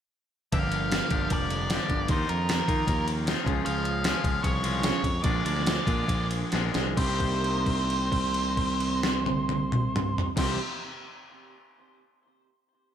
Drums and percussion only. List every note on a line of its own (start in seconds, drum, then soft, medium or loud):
0.52 kick loud
0.52 ride medium
0.72 ride medium
0.92 snare loud
0.92 ride medium
1.11 kick medium
1.11 ride medium
1.30 kick medium
1.30 ride medium
1.50 ride medium
1.70 snare loud
1.70 ride medium
1.90 kick medium
1.90 ride medium
2.08 kick loud
2.08 ride medium
2.29 ride medium
2.49 snare loud
2.49 ride medium
2.68 kick medium
2.68 ride medium
2.87 kick medium
2.87 ride medium
3.08 ride medium
3.27 snare loud
3.27 ride medium
3.47 kick medium
3.47 ride medium
3.66 ride medium
3.85 ride medium
4.04 snare loud
4.04 ride medium
4.24 kick medium
4.24 ride medium
4.44 kick medium
4.44 ride medium
4.64 ride medium
4.83 snare loud
4.83 ride medium
5.04 kick medium
5.04 ride medium
5.24 kick loud
5.24 ride medium
5.46 ride medium
5.57 snare soft
5.67 snare loud
5.67 ride medium
5.87 kick medium
5.87 ride medium
6.08 kick medium
6.08 ride medium
6.31 ride medium
6.52 snare medium
6.52 ride medium
6.74 snare medium
6.74 ride medium
6.97 kick loud
6.97 crash medium
7.20 kick medium
7.20 crash soft
7.44 crash soft
7.66 kick medium
7.66 crash soft
7.90 crash soft
8.12 kick medium
8.12 crash medium
8.34 crash soft
8.57 kick medium
8.57 crash soft
8.80 crash soft
9.03 snare medium
9.26 high tom medium
9.49 high tom medium
9.72 mid tom medium
9.96 mid tom loud
10.18 floor tom medium
10.37 kick loud
10.37 snare loud
10.37 crash loud